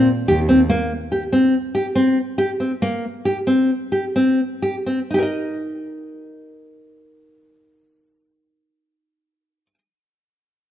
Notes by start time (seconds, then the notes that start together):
0.28 D#2 G4
0.49 C4
0.69 A#3
1.12 G4
1.32 C4
1.75 G4
1.95 C4
2.38 G4
2.60 C4
2.82 A#3
3.25 G4
3.47 C4
3.92 G4
4.16 C4
4.62 G4
4.86 C4
5.10 D#4 G4
5.18 A#4
5.22 D#5